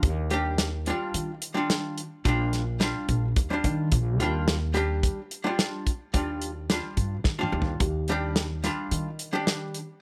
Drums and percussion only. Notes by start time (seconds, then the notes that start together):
0.03 kick, closed hi-hat
0.31 closed hi-hat
0.58 snare, closed hi-hat
0.86 closed hi-hat
1.14 closed hi-hat
1.42 closed hi-hat
1.70 snare, closed hi-hat
1.98 closed hi-hat
2.25 kick, closed hi-hat
2.53 snare, closed hi-hat
2.81 snare, closed hi-hat
3.09 kick, closed hi-hat
3.36 kick, closed hi-hat
3.64 kick, closed hi-hat
3.92 kick, closed hi-hat
4.20 closed hi-hat
4.48 snare, closed hi-hat
4.75 closed hi-hat
5.03 kick, closed hi-hat
5.31 closed hi-hat
5.59 snare, closed hi-hat
5.87 kick, closed hi-hat
6.14 kick, closed hi-hat
6.42 closed hi-hat
6.70 snare, closed hi-hat
6.97 kick, closed hi-hat
7.24 kick, snare
7.43 mid tom
7.62 floor tom
7.80 kick, closed hi-hat
8.08 closed hi-hat
8.36 snare, closed hi-hat
8.64 snare, closed hi-hat
8.91 closed hi-hat
9.19 closed hi-hat
9.47 snare, closed hi-hat
9.74 closed hi-hat